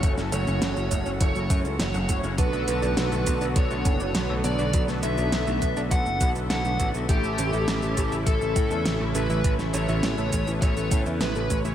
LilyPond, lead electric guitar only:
\new Staff \with { instrumentName = "Lead electric guitar" } { \time 4/4 \key b \dorian \tempo 4 = 102 cis''8 cis''4. cis''8 r8 cis''8 r8 | b'2 cis''4. d''8 | r8 e''4. fis''8 r8 fis''8 r8 | g'2 a'4. b'8 |
r8 cis''4. cis''8 r8 b'8 r8 | }